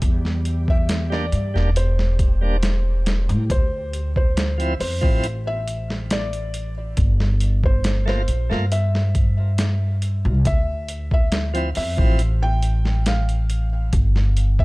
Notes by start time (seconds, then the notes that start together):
Already playing: G3 G4
0.02 E2, kick, closed hi-hat
0.25 snare
0.45 closed hi-hat
0.68 E5, kick
0.89 snare, closed hi-hat
1.10 G3 A#3 D4 D5, snare
1.32 G2, closed hi-hat
1.54 E1 G3 A#3 D4, snare
1.76 C5, closed hi-hat
1.99 snare
2.19 kick, closed hi-hat
2.41 G3 A#3 D4
2.63 snare, closed hi-hat
3.06 snare, closed hi-hat
3.29 A2, closed hi-hat
3.50 D2 C5, kick, closed hi-hat
3.93 closed hi-hat
4.16 C5, kick
4.37 snare, closed hi-hat
4.58 F3 C4 E4, closed hi-hat
4.80 F2 C5, open hi-hat
5.01 A1 F3 C4 E4, kick
5.24 closed hi-hat
5.47 E5
5.68 closed hi-hat
5.90 snare
6.11 D5, snare, closed hi-hat
6.33 closed hi-hat
6.54 closed hi-hat
6.97 G1, kick, closed hi-hat
7.20 snare
7.40 closed hi-hat
7.64 C5, kick
7.84 snare, closed hi-hat
8.06 A3 A#3 F4 C5, snare
8.28 A#1, closed hi-hat
8.50 G2 A3 A#3 F4, snare
8.72 E5, closed hi-hat
8.95 snare
9.15 kick, closed hi-hat
9.58 snare, closed hi-hat
10.02 closed hi-hat
10.25 C2
10.45 D2 E5, kick, closed hi-hat
10.88 closed hi-hat
11.11 E5, kick
11.32 snare, closed hi-hat
11.54 F3 C4 E4, closed hi-hat
11.75 F2 E5, open hi-hat
11.97 A1 F3 C4 E4, kick
12.19 closed hi-hat
12.43 G5
12.63 closed hi-hat
12.85 snare
13.06 F5, snare, closed hi-hat
13.29 closed hi-hat
13.50 closed hi-hat
13.93 G1, kick, closed hi-hat
14.16 snare
14.37 closed hi-hat
14.59 E5, kick